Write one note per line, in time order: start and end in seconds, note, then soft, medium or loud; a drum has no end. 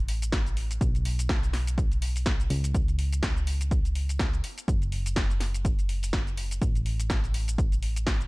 0.00 0.79 A1 medium
0.08 open hi-hat loud
0.22 closed hi-hat medium
0.22 shaker medium
0.32 kick loud
0.32 snare loud
0.32 closed hi-hat medium
0.32 shaker medium
0.47 closed hi-hat soft
0.47 shaker soft
0.57 open hi-hat loud
0.71 closed hi-hat medium
0.71 shaker medium
0.81 2.48 B1 medium
0.81 kick loud
0.81 closed hi-hat soft
0.81 shaker medium
0.95 closed hi-hat soft
0.95 shaker soft
1.05 open hi-hat loud
1.19 closed hi-hat medium
1.19 shaker medium
1.29 kick loud
1.29 snare loud
1.29 closed hi-hat medium
1.29 shaker soft
1.43 closed hi-hat soft
1.43 shaker soft
1.53 snare soft
1.53 open hi-hat loud
1.67 closed hi-hat medium
1.67 shaker medium
1.78 kick loud
1.78 closed hi-hat medium
1.78 shaker medium
1.92 closed hi-hat soft
1.92 shaker soft
2.02 open hi-hat loud
2.16 open hi-hat medium
2.16 shaker medium
2.26 kick loud
2.26 snare loud
2.26 closed hi-hat medium
2.26 shaker medium
2.40 closed hi-hat soft
2.40 shaker soft
2.50 4.42 C#2 medium
2.50 open hi-hat loud
2.64 closed hi-hat medium
2.64 shaker medium
2.74 kick loud
2.74 closed hi-hat medium
2.74 shaker medium
2.88 closed hi-hat soft
2.88 shaker soft
2.99 open hi-hat loud
3.13 closed hi-hat medium
3.13 shaker medium
3.23 kick loud
3.23 snare loud
3.23 closed hi-hat medium
3.23 shaker medium
3.37 closed hi-hat soft
3.37 shaker soft
3.47 open hi-hat loud
3.61 closed hi-hat medium
3.61 shaker medium
3.71 kick loud
3.71 closed hi-hat medium
3.71 shaker medium
3.85 closed hi-hat soft
3.85 shaker soft
3.95 open hi-hat loud
4.09 closed hi-hat soft
4.09 shaker medium
4.19 kick loud
4.19 snare loud
4.19 closed hi-hat soft
4.19 shaker medium
4.33 closed hi-hat soft
4.33 shaker soft
4.44 open hi-hat loud
4.58 closed hi-hat medium
4.58 shaker medium
4.68 6.59 F#1 medium
4.68 kick loud
4.68 closed hi-hat medium
4.68 shaker medium
4.82 closed hi-hat soft
4.82 shaker soft
4.92 open hi-hat loud
5.06 closed hi-hat soft
5.06 shaker medium
5.16 kick loud
5.16 snare loud
5.16 closed hi-hat soft
5.16 shaker medium
5.30 closed hi-hat soft
5.30 shaker soft
5.40 snare soft
5.40 open hi-hat loud
5.54 closed hi-hat medium
5.54 shaker medium
5.65 kick loud
5.65 closed hi-hat soft
5.65 shaker medium
5.79 closed hi-hat soft
5.79 shaker soft
5.89 open hi-hat loud
6.03 open hi-hat medium
6.03 shaker medium
6.13 kick loud
6.13 snare loud
6.13 closed hi-hat soft
6.13 shaker medium
6.27 closed hi-hat soft
6.27 shaker soft
6.37 open hi-hat loud
6.51 closed hi-hat soft
6.51 shaker medium
6.62 8.27 A1 medium
6.62 kick loud
6.62 closed hi-hat soft
6.62 shaker medium
6.75 closed hi-hat soft
6.75 shaker soft
6.86 open hi-hat loud
7.00 closed hi-hat medium
7.00 shaker medium
7.10 kick loud
7.10 snare loud
7.10 closed hi-hat soft
7.10 shaker medium
7.24 closed hi-hat soft
7.24 shaker soft
7.34 open hi-hat loud
7.48 closed hi-hat medium
7.48 shaker medium
7.58 kick loud
7.58 closed hi-hat medium
7.58 shaker medium
7.72 closed hi-hat soft
7.72 shaker soft
7.83 open hi-hat loud
7.96 closed hi-hat medium
7.96 shaker medium
8.07 kick loud
8.07 snare loud
8.07 closed hi-hat soft
8.07 shaker medium
8.21 closed hi-hat soft
8.21 shaker soft